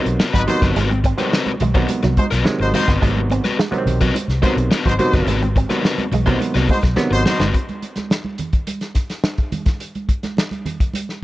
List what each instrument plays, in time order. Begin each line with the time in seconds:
Already playing: clav C3 D#3 F#3 B3
0.06 fingered electric bass B1, muted overdriven electric guitar stroke, closed hi-hat
0.20 overdriven electric guitar C4 F#4 B4, snare
0.33 fingered electric bass G#1, clean electric guitar F#3, horn section D#4 F#4 B4, kick
0.47 clav C3 D#3 F#3 B3, horn section D#4 F#4 C5, muted overdriven electric guitar stroke, muted clean electric guitar stroke, closed hi-hat, muted conga, high conga, low conga
0.62 fingered electric bass G1, clean electric guitar F#3, overdriven electric guitar C4 F#4 B4, kick, snare, closed hi-hat
0.76 fingered electric bass G#1, clean electric guitar G#3, overdriven electric guitar C4 F#4 B4, closed hi-hat
0.91 muted clean electric guitar stroke, muted overdriven electric guitar stroke, closed hi-hat, high conga
1.04 clean electric guitar C4, muted overdriven electric guitar stroke, kick, closed hi-hat, muted conga
1.18 clav C3 D#3 F#3 C4, overdriven electric guitar C4 F#4 B4, snare, closed hi-hat, high conga
1.32 overdriven electric guitar C4 F#4 B4, muted clean electric guitar stroke, snare
1.46 closed hi-hat, high conga
1.60 fingered electric bass B1, clean electric guitar G#3, muted overdriven electric guitar stroke, closed hi-hat, low conga
1.74 clav C3 D#3 F#3 B3, clean electric guitar F#3, overdriven electric guitar C4 F#4 C5, kick, closed hi-hat
1.89 muted overdriven electric guitar stroke, muted clean electric guitar stroke, closed hi-hat, muted conga, high conga
2.03 fingered electric bass C2, clean electric guitar F#3, muted overdriven electric guitar stroke, snare, closed hi-hat
2.17 clean electric guitar G#3, horn section D#4 F#4 C5, kick, closed hi-hat, high conga
2.31 fingered electric bass B1, overdriven electric guitar C4 F#4 B4, snare, closed hi-hat
2.45 clav C3 D#3 F#3 G#3, muted overdriven electric guitar stroke, muted clean electric guitar stroke, snare, muted conga
2.59 fingered electric bass G#1, horn section D#4 F#4 C5, muted overdriven electric guitar stroke
2.74 clean electric guitar G#3, overdriven electric guitar C4 F#4 C5, horn section D#4 F#4 C5, closed hi-hat, high conga, low conga
2.88 fingered electric bass G1, clean electric guitar B3, overdriven electric guitar C4 F#4 B4, kick, snare, closed hi-hat
3.01 fingered electric bass G#1, clav B2 D#3 F#3 B3, clean electric guitar G#3, overdriven electric guitar C4 F#4 B4, kick, closed hi-hat
3.07 clav C3
3.17 muted clean electric guitar stroke, high conga
3.30 clean electric guitar C4, muted overdriven electric guitar stroke, closed hi-hat, muted conga
3.44 overdriven electric guitar C4 F#4 B4, snare, closed hi-hat, high conga
3.59 clean electric guitar G#3, muted overdriven electric guitar stroke, snare
3.71 clav C3 D#3 F#3 B3, muted overdriven electric guitar stroke, muted clean electric guitar stroke, closed hi-hat, high conga
3.78 clav C4
3.86 fingered electric bass B1, closed hi-hat, muted conga, low conga
4.01 clean electric guitar F#3, overdriven electric guitar C4 F#4 B4, kick, closed hi-hat
4.15 muted overdriven electric guitar stroke, closed hi-hat, high conga
4.28 fingered electric bass C2, snare, closed hi-hat
4.42 clav C3 D#3 F#3 B3, clean electric guitar G#3, overdriven electric guitar C4 F#4 B4, horn section D#4 F#4 C5, kick, snare, closed hi-hat, high conga
4.56 fingered electric bass B1, muted overdriven electric guitar stroke, closed hi-hat
4.70 overdriven electric guitar C4 F#4 B4, muted fingered electric bass stroke, snare
4.85 fingered electric bass G#1, clean electric guitar F#3, horn section D#4 F#4 C5, kick
4.99 clav B2 C3 D#3 F#3, horn section D#4 F#4 C5, muted overdriven electric guitar stroke, muted clean electric guitar stroke, closed hi-hat, muted conga, high conga, low conga
5.13 fingered electric bass G1, clean electric guitar F#3, overdriven electric guitar C4 F#4 B4, kick, snare, closed hi-hat
5.27 fingered electric bass G#1, clean electric guitar G#3, overdriven electric guitar C4 F#4 B4, closed hi-hat, muted conga, low conga
5.42 muted overdriven electric guitar stroke, muted clean electric guitar stroke, closed hi-hat, high conga
5.56 clean electric guitar C4, muted overdriven electric guitar stroke, kick, closed hi-hat
5.69 clav C3 D#3 F#3 B3, overdriven electric guitar C4 F#4 B4, snare, closed hi-hat, high conga
5.84 overdriven electric guitar C4 F#4 B4, muted clean electric guitar stroke, snare, muted conga
5.98 closed hi-hat, high conga
6.12 fingered electric bass B1, clean electric guitar G#3, muted overdriven electric guitar stroke, closed hi-hat, low conga
6.26 clav C3 D#3 F#3 B3, clean electric guitar F#3, overdriven electric guitar C4 F#4 C5, kick, closed hi-hat
6.40 muted overdriven electric guitar stroke, muted clean electric guitar stroke, closed hi-hat, high conga
6.54 fingered electric bass C2, clean electric guitar F#3, overdriven electric guitar C4 F#4 B4, snare, closed hi-hat
6.68 clean electric guitar G#3, horn section D#4 F#4 C5, muted overdriven electric guitar stroke, kick, open hi-hat, high conga
6.83 fingered electric bass B1, muted overdriven electric guitar stroke, kick, snare, closed hi-hat
6.96 clav C3 D#3 F#3 B3, muted overdriven electric guitar stroke, muted fingered electric bass stroke, muted clean electric guitar stroke, snare
7.11 fingered electric bass G#1, horn section D#4 F#4 C5, muted overdriven electric guitar stroke
7.26 clean electric guitar F#3, overdriven electric guitar C4 F#4 C5, horn section D#4 F#4 C5, snare, muted conga, high conga, low conga
7.39 fingered electric bass G1, clean electric guitar G#3, overdriven electric guitar C4 F#4 B4, snare
7.54 kick, closed hi-hat
7.69 closed hi-hat, high conga
7.82 closed hi-hat, muted conga
7.96 snare, closed hi-hat, high conga
8.10 snare, muted conga
8.25 high conga
8.38 closed hi-hat, muted conga, low conga
8.53 kick, closed hi-hat
8.67 closed hi-hat, high conga
8.81 snare, closed hi-hat
8.95 kick, snare, closed hi-hat
9.10 snare, closed hi-hat
9.24 snare
9.38 kick, closed hi-hat
9.52 closed hi-hat, muted conga, high conga, low conga
9.66 kick, snare, closed hi-hat
9.80 closed hi-hat
9.95 closed hi-hat, high conga
10.09 kick, closed hi-hat, muted conga
10.23 snare, closed hi-hat, high conga
10.37 snare, muted conga
10.51 closed hi-hat, high conga
10.66 closed hi-hat, low conga
10.80 kick, closed hi-hat
10.94 closed hi-hat, muted conga, high conga
11.09 snare